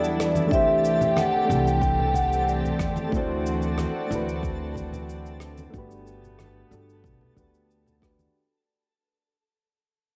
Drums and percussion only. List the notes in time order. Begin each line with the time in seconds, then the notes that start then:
0.04 cabasa
0.20 cross-stick, cabasa
0.35 high conga, cabasa
0.51 kick, cabasa
0.85 cabasa
1.01 low conga, cabasa
1.17 cross-stick, high conga, cabasa
1.51 cabasa
1.67 cabasa
1.81 kick, cabasa
1.99 low conga
2.14 kick, high conga, cabasa
2.33 cabasa
2.49 cabasa
2.64 low conga, cabasa
2.79 kick, cross-stick, cabasa
2.96 high conga, cabasa
3.12 kick, cabasa
3.46 cabasa
3.62 cabasa
3.78 cross-stick, high conga, cabasa
4.12 cabasa
4.29 cabasa
4.43 kick, cabasa
4.76 kick, high conga, cabasa
4.93 low conga, cabasa
5.10 cabasa
5.26 cabasa
5.40 cross-stick, cabasa
5.57 high conga, cabasa
5.74 kick, cabasa
5.91 cabasa
6.07 cabasa
6.24 low conga, cabasa
6.39 cross-stick, high conga, cabasa
6.72 cabasa
6.90 cabasa
7.04 kick, cabasa
7.21 low conga
7.37 kick, high conga, cabasa
7.54 cabasa
7.71 cabasa
7.86 low conga, cabasa
8.02 kick, cross-stick, cabasa
8.19 high conga, cabasa